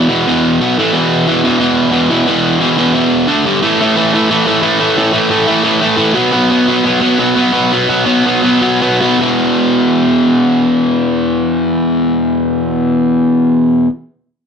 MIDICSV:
0, 0, Header, 1, 2, 480
1, 0, Start_track
1, 0, Tempo, 336889
1, 1328, Time_signature, 4, 2, 24, 8
1, 9490, Tempo, 350058
1, 11410, Tempo, 379747
1, 12850, Tempo, 397878
1, 19202, End_track
2, 0, Start_track
2, 0, Title_t, "Distorted electric guitar"
2, 0, Program_c, 0, 30
2, 0, Note_on_c, 0, 59, 96
2, 124, Note_on_c, 0, 52, 98
2, 132, Note_on_c, 0, 47, 83
2, 135, Note_on_c, 0, 40, 84
2, 370, Note_off_c, 0, 40, 0
2, 370, Note_off_c, 0, 47, 0
2, 378, Note_off_c, 0, 52, 0
2, 387, Note_on_c, 0, 40, 106
2, 387, Note_on_c, 0, 47, 104
2, 395, Note_on_c, 0, 52, 127
2, 843, Note_off_c, 0, 40, 0
2, 843, Note_off_c, 0, 47, 0
2, 847, Note_off_c, 0, 52, 0
2, 861, Note_on_c, 0, 47, 107
2, 861, Note_on_c, 0, 54, 110
2, 867, Note_off_c, 0, 59, 0
2, 873, Note_on_c, 0, 59, 121
2, 1080, Note_off_c, 0, 47, 0
2, 1080, Note_off_c, 0, 54, 0
2, 1086, Note_off_c, 0, 59, 0
2, 1107, Note_on_c, 0, 45, 108
2, 1116, Note_on_c, 0, 52, 106
2, 1119, Note_on_c, 0, 57, 115
2, 1318, Note_on_c, 0, 40, 98
2, 1323, Note_off_c, 0, 45, 0
2, 1329, Note_off_c, 0, 57, 0
2, 1331, Note_off_c, 0, 52, 0
2, 1331, Note_on_c, 0, 47, 109
2, 1337, Note_on_c, 0, 52, 112
2, 1796, Note_off_c, 0, 47, 0
2, 1798, Note_off_c, 0, 40, 0
2, 1803, Note_off_c, 0, 52, 0
2, 1813, Note_on_c, 0, 47, 76
2, 1815, Note_on_c, 0, 40, 78
2, 1820, Note_on_c, 0, 52, 98
2, 2029, Note_off_c, 0, 52, 0
2, 2043, Note_off_c, 0, 40, 0
2, 2043, Note_off_c, 0, 47, 0
2, 2047, Note_on_c, 0, 52, 91
2, 2060, Note_on_c, 0, 40, 83
2, 2060, Note_on_c, 0, 47, 93
2, 2252, Note_off_c, 0, 40, 0
2, 2259, Note_off_c, 0, 47, 0
2, 2267, Note_off_c, 0, 52, 0
2, 2269, Note_on_c, 0, 40, 113
2, 2276, Note_on_c, 0, 47, 120
2, 2284, Note_on_c, 0, 52, 119
2, 2711, Note_off_c, 0, 40, 0
2, 2724, Note_off_c, 0, 47, 0
2, 2727, Note_off_c, 0, 52, 0
2, 2728, Note_on_c, 0, 40, 101
2, 2741, Note_on_c, 0, 47, 95
2, 2744, Note_on_c, 0, 52, 112
2, 2975, Note_off_c, 0, 52, 0
2, 2987, Note_off_c, 0, 40, 0
2, 2991, Note_off_c, 0, 47, 0
2, 2992, Note_on_c, 0, 52, 109
2, 3004, Note_on_c, 0, 40, 82
2, 3008, Note_on_c, 0, 47, 86
2, 3208, Note_off_c, 0, 40, 0
2, 3224, Note_off_c, 0, 52, 0
2, 3225, Note_on_c, 0, 40, 93
2, 3227, Note_off_c, 0, 47, 0
2, 3241, Note_on_c, 0, 52, 112
2, 3244, Note_on_c, 0, 47, 97
2, 3685, Note_off_c, 0, 40, 0
2, 3687, Note_off_c, 0, 47, 0
2, 3691, Note_off_c, 0, 52, 0
2, 3702, Note_on_c, 0, 40, 91
2, 3704, Note_on_c, 0, 47, 79
2, 3708, Note_on_c, 0, 52, 90
2, 3933, Note_off_c, 0, 52, 0
2, 3941, Note_off_c, 0, 47, 0
2, 3948, Note_off_c, 0, 40, 0
2, 3950, Note_on_c, 0, 52, 98
2, 3959, Note_on_c, 0, 47, 86
2, 3966, Note_on_c, 0, 40, 76
2, 4168, Note_off_c, 0, 40, 0
2, 4173, Note_off_c, 0, 47, 0
2, 4185, Note_on_c, 0, 40, 105
2, 4189, Note_off_c, 0, 52, 0
2, 4190, Note_on_c, 0, 47, 112
2, 4206, Note_on_c, 0, 52, 114
2, 4659, Note_off_c, 0, 40, 0
2, 4662, Note_off_c, 0, 47, 0
2, 4668, Note_on_c, 0, 50, 114
2, 4670, Note_off_c, 0, 52, 0
2, 4684, Note_on_c, 0, 62, 116
2, 4689, Note_on_c, 0, 57, 97
2, 4901, Note_off_c, 0, 50, 0
2, 4909, Note_off_c, 0, 62, 0
2, 4911, Note_off_c, 0, 57, 0
2, 4924, Note_on_c, 0, 43, 98
2, 4934, Note_on_c, 0, 50, 113
2, 4938, Note_on_c, 0, 55, 111
2, 5149, Note_off_c, 0, 43, 0
2, 5149, Note_off_c, 0, 50, 0
2, 5155, Note_on_c, 0, 45, 87
2, 5156, Note_off_c, 0, 55, 0
2, 5164, Note_on_c, 0, 52, 96
2, 5169, Note_on_c, 0, 57, 96
2, 5420, Note_off_c, 0, 57, 0
2, 5425, Note_on_c, 0, 57, 92
2, 5426, Note_off_c, 0, 52, 0
2, 5431, Note_off_c, 0, 45, 0
2, 5432, Note_on_c, 0, 52, 87
2, 5437, Note_on_c, 0, 45, 79
2, 5640, Note_off_c, 0, 52, 0
2, 5643, Note_off_c, 0, 45, 0
2, 5646, Note_on_c, 0, 52, 91
2, 5648, Note_on_c, 0, 45, 74
2, 5651, Note_off_c, 0, 57, 0
2, 5656, Note_on_c, 0, 57, 77
2, 5870, Note_off_c, 0, 57, 0
2, 5882, Note_off_c, 0, 45, 0
2, 5886, Note_off_c, 0, 52, 0
2, 5887, Note_on_c, 0, 57, 87
2, 5899, Note_on_c, 0, 45, 65
2, 5903, Note_on_c, 0, 52, 78
2, 6117, Note_off_c, 0, 45, 0
2, 6123, Note_off_c, 0, 52, 0
2, 6124, Note_off_c, 0, 57, 0
2, 6134, Note_on_c, 0, 45, 92
2, 6140, Note_on_c, 0, 52, 112
2, 6141, Note_on_c, 0, 57, 95
2, 6337, Note_off_c, 0, 57, 0
2, 6347, Note_off_c, 0, 52, 0
2, 6351, Note_off_c, 0, 45, 0
2, 6354, Note_on_c, 0, 57, 98
2, 6364, Note_on_c, 0, 52, 100
2, 6368, Note_on_c, 0, 45, 94
2, 6568, Note_off_c, 0, 45, 0
2, 6575, Note_off_c, 0, 52, 0
2, 6576, Note_off_c, 0, 57, 0
2, 6585, Note_on_c, 0, 45, 86
2, 6593, Note_on_c, 0, 52, 105
2, 6593, Note_on_c, 0, 57, 118
2, 6817, Note_off_c, 0, 57, 0
2, 6827, Note_off_c, 0, 52, 0
2, 6833, Note_off_c, 0, 45, 0
2, 6834, Note_on_c, 0, 57, 87
2, 6844, Note_on_c, 0, 52, 86
2, 6850, Note_on_c, 0, 45, 72
2, 7072, Note_off_c, 0, 45, 0
2, 7076, Note_off_c, 0, 52, 0
2, 7080, Note_off_c, 0, 57, 0
2, 7089, Note_on_c, 0, 45, 85
2, 7093, Note_on_c, 0, 52, 92
2, 7098, Note_on_c, 0, 57, 85
2, 7290, Note_off_c, 0, 57, 0
2, 7303, Note_off_c, 0, 45, 0
2, 7308, Note_off_c, 0, 52, 0
2, 7308, Note_on_c, 0, 57, 105
2, 7320, Note_on_c, 0, 45, 88
2, 7325, Note_on_c, 0, 52, 88
2, 7529, Note_off_c, 0, 45, 0
2, 7545, Note_off_c, 0, 52, 0
2, 7546, Note_off_c, 0, 57, 0
2, 7546, Note_on_c, 0, 45, 87
2, 7562, Note_on_c, 0, 52, 86
2, 7563, Note_on_c, 0, 57, 97
2, 7780, Note_off_c, 0, 52, 0
2, 7782, Note_off_c, 0, 57, 0
2, 7790, Note_off_c, 0, 45, 0
2, 7797, Note_on_c, 0, 52, 81
2, 7799, Note_on_c, 0, 57, 77
2, 7807, Note_on_c, 0, 45, 70
2, 8014, Note_off_c, 0, 45, 0
2, 8021, Note_off_c, 0, 52, 0
2, 8031, Note_on_c, 0, 45, 95
2, 8032, Note_off_c, 0, 57, 0
2, 8038, Note_on_c, 0, 52, 102
2, 8049, Note_on_c, 0, 57, 106
2, 8257, Note_off_c, 0, 57, 0
2, 8273, Note_off_c, 0, 52, 0
2, 8275, Note_on_c, 0, 57, 102
2, 8288, Note_off_c, 0, 45, 0
2, 8290, Note_on_c, 0, 52, 94
2, 8305, Note_on_c, 0, 45, 86
2, 8484, Note_off_c, 0, 45, 0
2, 8488, Note_off_c, 0, 52, 0
2, 8500, Note_off_c, 0, 57, 0
2, 8501, Note_on_c, 0, 45, 92
2, 8505, Note_on_c, 0, 52, 109
2, 8517, Note_on_c, 0, 57, 97
2, 8740, Note_off_c, 0, 45, 0
2, 8742, Note_off_c, 0, 52, 0
2, 8748, Note_off_c, 0, 57, 0
2, 8749, Note_on_c, 0, 47, 103
2, 8753, Note_on_c, 0, 54, 96
2, 8768, Note_on_c, 0, 59, 110
2, 8996, Note_off_c, 0, 59, 0
2, 9002, Note_on_c, 0, 59, 94
2, 9010, Note_off_c, 0, 54, 0
2, 9015, Note_off_c, 0, 47, 0
2, 9016, Note_on_c, 0, 54, 94
2, 9021, Note_on_c, 0, 47, 77
2, 9258, Note_off_c, 0, 47, 0
2, 9261, Note_off_c, 0, 54, 0
2, 9263, Note_on_c, 0, 47, 89
2, 9267, Note_on_c, 0, 54, 88
2, 9269, Note_off_c, 0, 59, 0
2, 9275, Note_on_c, 0, 59, 89
2, 9503, Note_off_c, 0, 59, 0
2, 9508, Note_on_c, 0, 59, 92
2, 9509, Note_off_c, 0, 54, 0
2, 9514, Note_on_c, 0, 54, 84
2, 9523, Note_off_c, 0, 47, 0
2, 9529, Note_on_c, 0, 47, 74
2, 9734, Note_off_c, 0, 47, 0
2, 9739, Note_on_c, 0, 47, 82
2, 9740, Note_off_c, 0, 54, 0
2, 9745, Note_on_c, 0, 54, 82
2, 9751, Note_off_c, 0, 59, 0
2, 9756, Note_on_c, 0, 59, 79
2, 9958, Note_off_c, 0, 59, 0
2, 9959, Note_off_c, 0, 54, 0
2, 9960, Note_off_c, 0, 47, 0
2, 9964, Note_on_c, 0, 59, 96
2, 9975, Note_on_c, 0, 54, 90
2, 9976, Note_on_c, 0, 47, 85
2, 10196, Note_off_c, 0, 47, 0
2, 10198, Note_off_c, 0, 54, 0
2, 10213, Note_on_c, 0, 47, 87
2, 10214, Note_on_c, 0, 54, 87
2, 10224, Note_off_c, 0, 59, 0
2, 10230, Note_on_c, 0, 59, 93
2, 10438, Note_off_c, 0, 59, 0
2, 10439, Note_off_c, 0, 47, 0
2, 10442, Note_off_c, 0, 54, 0
2, 10444, Note_on_c, 0, 59, 105
2, 10455, Note_on_c, 0, 47, 77
2, 10458, Note_on_c, 0, 54, 89
2, 10659, Note_off_c, 0, 47, 0
2, 10665, Note_off_c, 0, 54, 0
2, 10675, Note_on_c, 0, 47, 83
2, 10681, Note_on_c, 0, 54, 78
2, 10683, Note_off_c, 0, 59, 0
2, 10689, Note_on_c, 0, 59, 79
2, 10927, Note_off_c, 0, 59, 0
2, 10928, Note_off_c, 0, 54, 0
2, 10935, Note_off_c, 0, 47, 0
2, 10943, Note_on_c, 0, 59, 93
2, 10945, Note_on_c, 0, 54, 88
2, 10952, Note_on_c, 0, 47, 80
2, 11162, Note_off_c, 0, 47, 0
2, 11162, Note_off_c, 0, 54, 0
2, 11166, Note_off_c, 0, 59, 0
2, 11178, Note_on_c, 0, 47, 82
2, 11179, Note_on_c, 0, 54, 90
2, 11182, Note_on_c, 0, 59, 91
2, 11389, Note_off_c, 0, 59, 0
2, 11391, Note_off_c, 0, 54, 0
2, 11401, Note_off_c, 0, 47, 0
2, 11405, Note_on_c, 0, 59, 79
2, 11407, Note_on_c, 0, 54, 76
2, 11417, Note_on_c, 0, 47, 73
2, 11630, Note_off_c, 0, 47, 0
2, 11645, Note_off_c, 0, 54, 0
2, 11645, Note_on_c, 0, 47, 72
2, 11651, Note_off_c, 0, 59, 0
2, 11661, Note_on_c, 0, 54, 74
2, 11666, Note_on_c, 0, 59, 85
2, 11860, Note_off_c, 0, 59, 0
2, 11873, Note_off_c, 0, 54, 0
2, 11874, Note_off_c, 0, 47, 0
2, 11875, Note_on_c, 0, 59, 89
2, 11888, Note_on_c, 0, 54, 97
2, 11890, Note_on_c, 0, 47, 84
2, 12100, Note_off_c, 0, 47, 0
2, 12100, Note_off_c, 0, 54, 0
2, 12111, Note_off_c, 0, 59, 0
2, 12115, Note_on_c, 0, 47, 77
2, 12115, Note_on_c, 0, 54, 97
2, 12126, Note_on_c, 0, 59, 96
2, 12348, Note_off_c, 0, 59, 0
2, 12354, Note_off_c, 0, 54, 0
2, 12355, Note_off_c, 0, 47, 0
2, 12363, Note_on_c, 0, 59, 96
2, 12369, Note_on_c, 0, 54, 94
2, 12370, Note_on_c, 0, 47, 84
2, 12592, Note_off_c, 0, 47, 0
2, 12595, Note_off_c, 0, 54, 0
2, 12602, Note_off_c, 0, 59, 0
2, 12607, Note_on_c, 0, 47, 78
2, 12611, Note_on_c, 0, 54, 81
2, 12618, Note_on_c, 0, 59, 88
2, 12823, Note_on_c, 0, 40, 86
2, 12832, Note_off_c, 0, 47, 0
2, 12840, Note_off_c, 0, 54, 0
2, 12843, Note_off_c, 0, 59, 0
2, 12848, Note_on_c, 0, 47, 90
2, 12877, Note_on_c, 0, 52, 92
2, 18487, Note_off_c, 0, 40, 0
2, 18498, Note_off_c, 0, 47, 0
2, 18513, Note_off_c, 0, 52, 0
2, 19202, End_track
0, 0, End_of_file